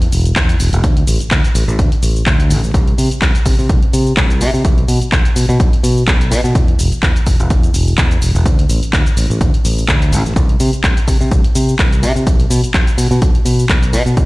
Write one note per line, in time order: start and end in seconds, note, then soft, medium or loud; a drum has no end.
0.02 closed hi-hat medium
0.12 0.31 E1 loud
0.12 open hi-hat loud
0.12 shaker medium
0.26 closed hi-hat soft
0.26 shaker soft
0.36 0.55 E2 medium
0.36 kick loud
0.36 clap loud
0.36 closed hi-hat medium
0.36 shaker soft
0.49 closed hi-hat medium
0.49 shaker soft
0.60 0.70 E1 medium
0.60 open hi-hat loud
0.60 shaker medium
0.73 0.81 E1 loud
0.73 closed hi-hat soft
0.73 shaker soft
0.84 1.02 D2 loud
0.84 kick loud
0.84 closed hi-hat medium
0.84 shaker soft
0.97 closed hi-hat medium
1.07 1.17 A1 loud
1.07 open hi-hat loud
1.07 shaker medium
1.20 muted fingered electric bass stroke soft
1.20 closed hi-hat soft
1.20 shaker soft
1.31 1.41 D2 loud
1.31 kick loud
1.31 clap loud
1.31 closed hi-hat medium
1.31 shaker soft
1.44 closed hi-hat medium
1.44 shaker soft
1.55 1.65 A1 medium
1.55 open hi-hat loud
1.55 shaker medium
1.68 1.76 A1 loud
1.68 shaker soft
1.79 1.89 D2 loud
1.79 kick loud
1.79 closed hi-hat medium
1.79 shaker soft
1.92 closed hi-hat medium
2.03 2.21 A1 medium
2.03 open hi-hat loud
2.03 shaker medium
2.16 shaker soft
2.26 2.52 D2 loud
2.26 kick loud
2.26 clap loud
2.26 closed hi-hat medium
2.26 shaker soft
2.40 closed hi-hat medium
2.40 shaker soft
2.50 2.60 A1 medium
2.50 open hi-hat loud
2.50 shaker medium
2.63 2.71 A1 medium
2.63 shaker soft
2.74 2.93 C2 loud
2.74 kick loud
2.74 closed hi-hat medium
2.74 shaker soft
2.88 closed hi-hat medium
2.98 3.08 C3 loud
2.98 open hi-hat loud
2.98 shaker medium
3.11 muted fingered electric bass stroke soft
3.11 closed hi-hat soft
3.11 shaker soft
3.22 3.32 C2 loud
3.22 kick loud
3.22 clap loud
3.22 closed hi-hat medium
3.22 shaker soft
3.35 closed hi-hat medium
3.35 shaker soft
3.45 3.55 C3 loud
3.45 kick medium
3.45 open hi-hat loud
3.45 shaker medium
3.59 3.67 C3 loud
3.59 shaker soft
3.69 3.79 C2 loud
3.69 kick loud
3.69 closed hi-hat medium
3.69 shaker soft
3.83 closed hi-hat medium
3.93 4.12 C3 medium
3.93 open hi-hat loud
3.93 shaker medium
4.07 shaker soft
4.17 4.42 C2 loud
4.17 kick loud
4.17 clap loud
4.17 closed hi-hat medium
4.17 shaker soft
4.30 closed hi-hat medium
4.30 shaker soft
4.41 4.51 C3 medium
4.41 open hi-hat loud
4.41 shaker medium
4.54 4.62 C3 medium
4.54 shaker soft
4.65 4.83 B1 loud
4.65 kick loud
4.65 closed hi-hat medium
4.65 shaker soft
4.78 closed hi-hat soft
4.88 4.98 B2 loud
4.88 open hi-hat loud
4.88 shaker medium
5.01 muted fingered electric bass stroke soft
5.01 closed hi-hat soft
5.01 shaker soft
5.12 5.22 B1 loud
5.12 kick loud
5.12 clap loud
5.12 closed hi-hat medium
5.12 shaker soft
5.25 closed hi-hat medium
5.25 shaker soft
5.36 5.46 B2 medium
5.36 open hi-hat loud
5.36 shaker medium
5.49 5.57 B2 loud
5.49 shaker soft
5.60 5.70 B1 loud
5.60 kick loud
5.60 closed hi-hat medium
5.60 shaker soft
5.73 closed hi-hat medium
5.83 6.02 B2 medium
5.83 open hi-hat loud
5.83 shaker medium
5.97 shaker soft
6.08 6.32 B1 loud
6.08 kick loud
6.08 clap loud
6.08 closed hi-hat medium
6.08 shaker soft
6.21 closed hi-hat medium
6.21 shaker soft
6.31 6.41 B2 loud
6.31 open hi-hat loud
6.31 shaker medium
6.44 6.52 B2 medium
6.44 shaker soft
6.55 6.74 E2 loud
6.55 kick loud
6.55 closed hi-hat medium
6.55 shaker soft
6.68 closed hi-hat soft
6.79 6.89 E1 medium
6.79 open hi-hat loud
6.79 shaker medium
6.92 muted fingered electric bass stroke soft
6.92 closed hi-hat soft
6.92 shaker soft
7.03 7.13 E2 loud
7.03 kick loud
7.03 clap loud
7.03 closed hi-hat medium
7.03 shaker soft
7.16 closed hi-hat soft
7.16 shaker soft
7.27 7.36 E1 loud
7.27 kick medium
7.27 open hi-hat loud
7.27 shaker medium
7.40 7.48 E1 loud
7.40 closed hi-hat soft
7.40 shaker soft
7.50 7.69 E2 medium
7.50 kick loud
7.50 closed hi-hat medium
7.50 shaker soft
7.63 closed hi-hat soft
7.63 shaker soft
7.74 7.93 E1 medium
7.74 open hi-hat loud
7.74 shaker medium
7.88 shaker soft
7.98 8.16 E2 loud
7.98 kick loud
7.98 clap loud
7.98 closed hi-hat medium
7.98 shaker soft
8.11 closed hi-hat medium
8.11 shaker soft
8.22 8.32 E1 medium
8.22 open hi-hat loud
8.22 shaker medium
8.35 8.43 E1 loud
8.35 shaker soft
8.46 8.64 D2 loud
8.46 kick loud
8.46 closed hi-hat medium
8.46 shaker soft
8.59 closed hi-hat medium
8.69 8.79 A1 loud
8.69 open hi-hat loud
8.69 shaker medium
8.83 muted fingered electric bass stroke soft
8.83 closed hi-hat soft
8.83 shaker soft
8.93 9.03 D2 loud
8.93 kick loud
8.93 clap loud
8.93 closed hi-hat medium
8.93 shaker soft
9.06 closed hi-hat medium
9.06 shaker soft
9.17 9.27 A1 medium
9.17 open hi-hat loud
9.17 shaker medium
9.30 9.38 A1 loud
9.30 shaker soft
9.41 9.51 D2 loud
9.41 kick loud
9.41 closed hi-hat medium
9.41 shaker soft
9.54 closed hi-hat medium
9.65 9.83 A1 medium
9.65 open hi-hat loud
9.65 shaker medium
9.78 shaker soft
9.88 10.14 D2 loud
9.88 kick loud
9.88 clap loud
9.88 closed hi-hat medium
9.88 shaker soft
10.02 closed hi-hat soft
10.02 shaker soft
10.12 10.22 A1 loud
10.12 open hi-hat loud
10.12 shaker medium
10.25 10.33 A1 medium
10.25 shaker soft
10.36 10.55 C2 loud
10.36 kick loud
10.36 closed hi-hat medium
10.36 shaker soft
10.49 closed hi-hat medium
10.60 10.70 C3 loud
10.60 open hi-hat loud
10.60 shaker medium
10.73 muted fingered electric bass stroke soft
10.73 closed hi-hat soft
10.73 shaker soft
10.84 10.94 C2 loud
10.84 kick loud
10.84 clap loud
10.84 closed hi-hat medium
10.84 shaker soft
10.97 closed hi-hat medium
10.97 shaker soft
11.08 11.17 C3 medium
11.08 kick medium
11.08 open hi-hat loud
11.08 shaker medium
11.21 11.29 C3 loud
11.21 shaker soft
11.31 11.41 C2 loud
11.31 kick loud
11.31 closed hi-hat medium
11.31 shaker soft
11.44 closed hi-hat medium
11.55 11.74 C3 medium
11.55 open hi-hat loud
11.55 shaker medium
11.69 shaker soft
11.79 12.04 C2 loud
11.79 kick loud
11.79 clap loud
11.79 closed hi-hat medium
11.79 shaker soft
11.92 closed hi-hat medium
11.92 shaker soft
12.03 12.13 C3 loud
12.03 open hi-hat loud
12.03 shaker medium
12.16 12.24 C3 medium
12.16 shaker soft
12.27 12.45 B1 loud
12.27 kick loud
12.27 closed hi-hat medium
12.27 shaker soft
12.40 closed hi-hat medium
12.50 12.60 B2 loud
12.50 open hi-hat loud
12.50 shaker medium
12.63 muted fingered electric bass stroke soft
12.63 closed hi-hat soft
12.63 shaker soft
12.74 12.84 B1 loud
12.74 kick loud
12.74 clap loud
12.74 closed hi-hat medium
12.74 shaker soft
12.87 closed hi-hat medium
12.87 shaker soft
12.98 13.08 B2 medium
12.98 open hi-hat loud
12.98 shaker medium
13.11 13.19 B2 loud
13.11 shaker soft
13.22 13.32 B1 medium
13.22 kick loud
13.22 closed hi-hat medium
13.22 shaker soft
13.35 closed hi-hat medium
13.45 13.64 B2 medium
13.45 open hi-hat loud
13.45 shaker medium
13.59 shaker soft
13.69 13.95 B1 loud
13.69 kick loud
13.69 clap loud
13.69 closed hi-hat medium
13.69 shaker soft
13.83 closed hi-hat medium
13.83 shaker soft
13.93 14.03 B2 loud
13.93 open hi-hat loud
13.93 shaker medium
14.06 14.14 B2 medium
14.06 shaker soft
14.17 14.26 E2 loud
14.17 kick loud
14.17 closed hi-hat medium
14.17 shaker soft